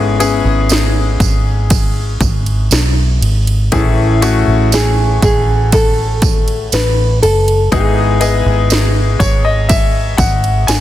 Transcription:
Already playing: G#1 G#2 G#3 B3 C#4 E4 G#4
0.19 B3 C#4 E4 G#4, ride, tambourine
0.45 G#1
0.69 snare, ride, tambourine
1.20 G#1, kick, ride, tambourine
1.70 kick, ride, tambourine
2.20 G#1, kick, ride, tambourine
2.46 ride
2.71 B1, snare, ride, tambourine
3.21 G#1, ride
3.47 ride
3.72 A1 A2 E3 A3 C#4 E4 G#4, kick, ride, tambourine
4.22 A3 C#4 E4 F#4, ride, tambourine
4.47 A1
4.72 G#4, snare, ride, tambourine
5.22 A1 G#4, kick, ride, tambourine
5.72 A4, kick, ride, tambourine
6.22 kick, ride, tambourine
6.48 ride
6.72 A1 B4, snare, ride, tambourine
7.22 F#1 A4, ride, tambourine
7.48 ride
7.72 G#1 G#2 G#3 B3 D#4 E4 G#4, kick, ride, tambourine
8.20 B3 E4 G#4 D#5, ride, tambourine
8.46 G#1
8.70 snare, ride, tambourine
9.19 G#1 C#5, kick, ride, tambourine
9.45 D#5
9.69 E5, kick, ride, tambourine
10.17 G#1 F#5, kick, ride, tambourine
10.44 ride
10.67 G#5, snare, ride, tambourine

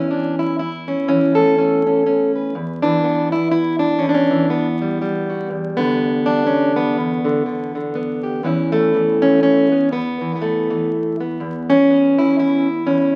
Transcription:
Already playing: E2 E3 C#4 E4
0.11 D4
0.39 E4
0.59 E4
0.88 C#4
1.08 E3 C#4
1.35 A3 A4
1.58 C#4
1.87 C#4
2.06 C#4
2.36 B4
2.55 E2
2.82 E3 D4
3.04 B3
3.32 E4
3.51 E4
3.79 D4
3.99 E2 C#4
4.09 D4
4.14 C#4
4.31 E3
4.50 B3
4.82 G3
5.02 G3
5.30 F#4
5.50 E2
5.77 D3 B3
6.26 D4
6.47 C#4
6.76 B3
6.97 E2
7.25 D3
7.46 D3
7.75 D3
7.95 B3
8.23 G4
8.43 E2 E3 B3 C#4 E4
8.72 A3
8.94 E3
9.22 C#4
9.43 C#4
9.72 B3
9.91 E2 B3
10.21 E3
10.36 B3
10.42 A3
10.70 E3
11.20 B3
11.40 E2
11.70 C#4
11.90 B3
12.19 E4
12.39 E4
12.86 E2 C#4

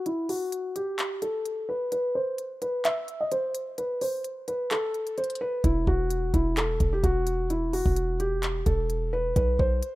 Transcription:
0.06 E4, closed hi-hat
0.29 F#4, open hi-hat
0.52 closed hi-hat
0.76 G4, closed hi-hat
0.99 clap, closed hi-hat
1.22 A4, closed hi-hat
1.45 closed hi-hat
1.69 B4
1.92 B4, closed hi-hat
2.15 C5
2.38 closed hi-hat
2.62 B4, closed hi-hat
2.85 E5, clap, closed hi-hat
3.08 closed hi-hat
3.21 D#5
3.32 C5, closed hi-hat
3.55 closed hi-hat
3.78 B4, closed hi-hat
4.01 C5, open hi-hat
4.24 closed hi-hat
4.48 B4, closed hi-hat
4.71 A4, clap, closed hi-hat
4.94 closed hi-hat
5.07 closed hi-hat
5.18 C5, closed hi-hat
5.24 closed hi-hat
5.30 closed hi-hat
5.35 closed hi-hat
5.41 B4
5.64 E1 E4, kick, closed hi-hat
5.87 E1 F#4, kick
6.10 closed hi-hat
6.34 E1 E4, kick, closed hi-hat
6.57 A4, clap, closed hi-hat
6.80 E1, kick, closed hi-hat
6.93 G4
7.04 E1 F#4, kick, closed hi-hat
7.27 closed hi-hat
7.50 E4, closed hi-hat
7.73 F#4, open hi-hat
7.86 E1, kick
7.96 closed hi-hat
8.20 G4, closed hi-hat
8.43 clap, closed hi-hat
8.66 E1 A4, kick, closed hi-hat
8.90 closed hi-hat
9.13 B4
9.36 B1 B4, kick, closed hi-hat
9.59 B1 C5, kick
9.83 closed hi-hat

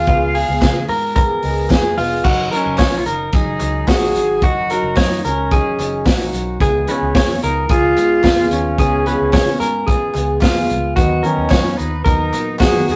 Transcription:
Already playing: F5
0.07 C#2 C#3 G#3 B3 F4 G#4, kick, closed hi-hat
0.35 G#4, open hi-hat
0.47 C#2 B3 F4 G#4
0.61 C#3, kick, snare, clap, closed hi-hat
0.88 G#2 A#4, open hi-hat
1.15 G#3 B3 F4 G#4 A#4, kick, closed hi-hat
1.42 C#2 G#3 B3 F4 G#4, open hi-hat
1.69 F2 G#3 B3 F4 G#4, kick, snare, clap, closed hi-hat
1.97 F1 G#3 B3 F4 G#4, open hi-hat
2.24 F#1 F#3 C#4 D#4 F#4 A#4, kick, crash
2.51 F#3 C#4 D#4 A#4, hi-hat pedal, open hi-hat
2.56 C#4
2.66 F#1
2.78 A#1 C#5, kick, snare, clap, hi-hat pedal, open hi-hat
2.93 C#4 D#4 A#4
2.98 F4
3.05 F#1 D#4 A#4, hi-hat pedal, open hi-hat
3.32 F#1 F#3 C#4 D#4 G#4 A#4, kick, hi-hat pedal, open hi-hat
3.59 C#2 F#3 C#4 D#4 A#4, clap, hi-hat pedal, open hi-hat
3.87 F#4 G#4, kick, snare, clap, hi-hat pedal, open hi-hat
4.01 F#3 C#4 D#4 A#4
4.14 G#1, hi-hat pedal, open hi-hat
4.42 F#1 F#3 C#4 D#4 F#4 A#4, kick, hi-hat pedal, open hi-hat
4.70 F#3 C#4 D#4 A#4, hi-hat pedal, open hi-hat
4.82 F#1
4.96 F#2 D#4 C#5, kick, snare, clap, hi-hat pedal, open hi-hat
5.10 C#4 D#4 A#4
5.24 C#2 C#4 A#4, hi-hat pedal, open hi-hat
5.51 F#3 C#4 D#4 G#4 A#4, kick, hi-hat pedal, open hi-hat
5.78 F#1 F#3 C#4 D#4 A#4, clap, hi-hat pedal, open hi-hat
6.06 A#1 F#4, kick, snare, clap, hi-hat pedal, open hi-hat
6.19 F#3 C#4 D#4 A#4
6.33 B1, hi-hat pedal, open hi-hat
6.60 C#2 C#3 G#3 B3 F4 G#4, kick, hi-hat pedal, open hi-hat
6.87 C#3 G#3 B3 D#4 F4 G#4 B4, hi-hat pedal, open hi-hat
6.91 C#4
7.01 C#2
7.15 F2 C#5, kick, snare, clap, hi-hat pedal, open hi-hat
7.28 B3 F4 G#4
7.42 C#2 D#4 A#4, hi-hat pedal, open hi-hat
7.69 C#2 G#3 B3 F4 G#4, kick, hi-hat pedal, open hi-hat
7.96 G#2 G#3 B3 F4 G#4, clap, hi-hat pedal, open hi-hat
8.23 F2 F4, kick, snare, clap, hi-hat pedal, open hi-hat
8.38 C#3 G#3 B3 F4 G#4
8.51 D#2 C#4, hi-hat pedal, open hi-hat
8.78 C#2 C#3 G#3 B3 F4 G#4, kick, hi-hat pedal, open hi-hat
9.06 C#3 G#3 B3 F4 G#4 B4, hi-hat pedal, open hi-hat
9.20 C#2
9.33 C#3 C#5, kick, snare, clap, hi-hat pedal, open hi-hat
9.47 B3 F4 G#4
9.60 G#2 A#4, hi-hat pedal, open hi-hat
9.87 G#3 B3 F4 G#4, kick, hi-hat pedal, open hi-hat
9.91 G#4
10.14 C#2 G#3 B3 F4 G#4, clap, hi-hat pedal, open hi-hat
10.41 F2 F4, kick, snare, clap, hi-hat pedal, open hi-hat
10.56 C#3 G#3 B3 F4 G#4
10.69 C#2, hi-hat pedal, open hi-hat
10.95 D#2 D#3 F#3 B3 D#4 F#4 A#4, kick, hi-hat pedal, open hi-hat
11.23 D#3 F#3 B3 C#4 D#4 A#4, hi-hat pedal, open hi-hat
11.37 D#2
11.49 F#2 C#5, kick, snare, clap, hi-hat pedal, open hi-hat
11.64 B3 D#4 A#4
11.77 D#2 D#4 B4, hi-hat pedal, open hi-hat
12.05 D#2 F#3 B3 D#4 A#4, kick, hi-hat pedal, open hi-hat
12.32 A#2 F#3 B3 D#4 A#4, clap, hi-hat pedal, open hi-hat
12.59 F#2 F#4 G#4, kick, snare, clap, hi-hat pedal, open hi-hat
12.74 D#3 F#3 B3 D#4 A#4
12.88 F2 G#4, hi-hat pedal, open hi-hat

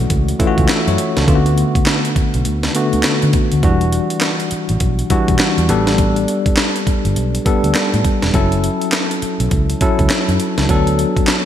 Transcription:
Already playing: E3 A3 C#4 F#4
0.10 C#2, kick, closed hi-hat
0.28 closed hi-hat
0.40 E3 A3 C#4 F4, kick, closed hi-hat
0.47 F#4
0.58 C#2, kick, closed hi-hat
0.69 E5, snare, clap, closed hi-hat
0.88 F#2 E4 C#5, closed hi-hat
0.98 closed hi-hat
1.17 C#2 C#4 A4, snare, closed hi-hat
1.28 D2 D3 A3 B3 F4, kick, closed hi-hat
1.35 F#4
1.46 closed hi-hat
1.58 closed hi-hat
1.75 kick, closed hi-hat
1.86 snare, clap, closed hi-hat
2.05 closed hi-hat
2.16 muted fingered electric bass stroke, kick, closed hi-hat
2.34 B1, closed hi-hat
2.45 D2, closed hi-hat
2.63 snare, closed hi-hat
2.75 D3 A3 B3 F#4, closed hi-hat
2.93 D2, closed hi-hat
3.03 snare, clap, closed hi-hat
3.22 D3, closed hi-hat
3.33 kick, closed hi-hat
3.52 D2, closed hi-hat
3.63 E1 E3 G3 D4 F#4, kick, closed hi-hat
3.81 closed hi-hat
3.92 closed hi-hat
4.10 closed hi-hat
4.21 snare, clap, closed hi-hat
4.40 closed hi-hat
4.51 muted fingered electric bass stroke, closed hi-hat
4.69 A1, closed hi-hat
4.80 B1, kick, closed hi-hat
4.99 closed hi-hat
5.10 E3 G3 D4 F#4, kick, closed hi-hat
5.28 B1, kick, closed hi-hat
5.39 snare, clap, closed hi-hat
5.58 E2, closed hi-hat
5.69 A1 G3 B3 D4 A4, closed hi-hat
5.87 snare, closed hi-hat
5.98 kick, closed hi-hat
6.16 closed hi-hat
6.28 closed hi-hat
6.46 kick, closed hi-hat
6.57 snare, clap, closed hi-hat
6.76 closed hi-hat
6.87 muted fingered electric bass stroke, kick, closed hi-hat
7.05 G1, closed hi-hat
7.16 B1, closed hi-hat
7.35 closed hi-hat
7.45 G3 B3 D4 A4, kick, closed hi-hat
7.64 D2, closed hi-hat
7.75 snare, clap, closed hi-hat
7.94 A2, closed hi-hat
8.05 kick, closed hi-hat
8.22 E1, snare, closed hi-hat
8.34 F#1 F#3 C#4 E4 A4, kick, closed hi-hat
8.52 closed hi-hat
8.64 closed hi-hat
8.81 closed hi-hat
8.92 snare, clap, closed hi-hat
9.11 closed hi-hat
9.22 muted fingered electric bass stroke, closed hi-hat
9.40 B1, closed hi-hat
9.51 C#2, kick, closed hi-hat
9.70 closed hi-hat
9.81 F#3 C#4 E4 A4, kick, closed hi-hat
9.99 C#2, kick, closed hi-hat
10.10 snare, clap, closed hi-hat
10.28 F#2, closed hi-hat
10.40 closed hi-hat
10.58 C#2, snare, closed hi-hat
10.69 D2 F#3 B3 D4 A4, kick, closed hi-hat
10.87 closed hi-hat
10.99 closed hi-hat
11.17 kick, closed hi-hat
11.27 snare, clap, closed hi-hat

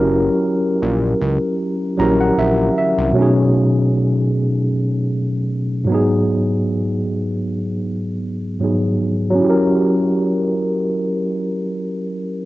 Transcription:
Already playing: F#1 F#3 C#4 E4 G4 A#4
0.82 A#1
1.21 C#2
1.97 A#1 F#3 C#4 E4 G4 A#5
2.02 A#4
2.21 F#5
2.38 A#1 E5
2.78 E5
2.98 C2
3.12 B2 F#3 A3
3.18 C#4 D#4 G#4
5.85 G#2 F#3
5.89 B3 D#4
5.94 G#4
8.59 G#2 F#3 B3 D#4
8.64 G#4
9.30 F#3
9.35 C#4
9.40 E4
9.45 G4
9.50 A#4

